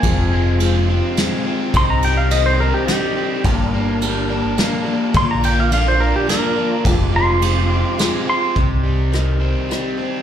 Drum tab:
RD |x-x-x-|xxx-x-|x-x-x-|xxx-x-|
HH |------|------|------|------|
SD |----o-|----o-|----o-|----o-|
BD |o-----|o-----|o-----|o-----|

RD |x-x-x-|------|
HH |------|x-x-x-|
SD |----o-|--r-r-|
BD |o-----|o-----|